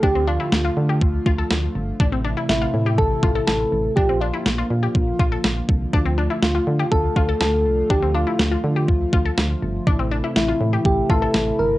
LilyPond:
<<
  \new Staff \with { instrumentName = "Soft synth lead" } { \time 4/4 \key d \minor \tempo 4 = 122 g'8 f'2 r4. | r4 e'4 a'4 a'4 | g'8 f'2 r4. | r4 f'4 a'4 a'4 |
g'8 f'2 r4. | r4 e'4 g'8 a'4 bes'8 | }
  \new Staff \with { instrumentName = "Synth arpeggio sound" } { \time 4/4 \key d \minor d'16 c'16 d'16 e'8 f'8 g'8 r16 f'16 a'8 r8. | d'16 c'16 d'16 e'8 f'8 g'8 r16 f'16 a'8 r8. | d'16 c'16 d'16 e'8 f'8 g'8 r16 f'16 a'8 r8. | d'16 c'16 d'16 e'8 f'8 g'8 r16 f'16 a'8 r8. |
d'16 c'16 d'16 e'8 f'8 g'8 r16 f'16 a'8 r8. | d'16 c'16 d'16 e'8 f'8 g'8 r16 f'16 a'8 r8. | }
  \new Staff \with { instrumentName = "Analog synth pad" } { \time 4/4 \key d \minor << { <a f'>1 | <a e'>1 | <bes f'>1 | <a f'>1~ |
<a f'>1 | <a e'>1 | } \\ { <d f>1 | <c e>1 | <d f>1~ | <d f>1~ |
<d f>1 | <c e>1 | } >> }
  \new Staff \with { instrumentName = "FM bass" } { \clef bass \time 4/4 \key d \minor d,4 d,8 d8 d,8 d,8 d,8 g,,8 | a,,4 a,,8 a,8 a,,8 a,,8 a,,8 a,,8 | bes,,4 bes,,8 bes,8 bes,,8 bes,,8 bes,,8 c,8 | d,4 d,8 d8 d,8 d,8 d,8 c,8 |
d,4 d,8 d8 d,8 d,8 d,8 g,,8 | a,,4 a,,8 a,8 a,,8 a,,8 a,,8 g,,8 | }
  \new DrumStaff \with { instrumentName = "Drums" } \drummode { \time 4/4 bd4 sn4 bd8 bd8 sn4 | bd4 sn4 bd8 bd8 sn4 | bd4 sn4 bd8 bd8 sn8 bd8 | bd4 sn4 bd8 bd8 sn4 |
bd4 sn4 bd8 bd8 sn4 | bd4 sn4 bd8 bd8 sn4 | }
>>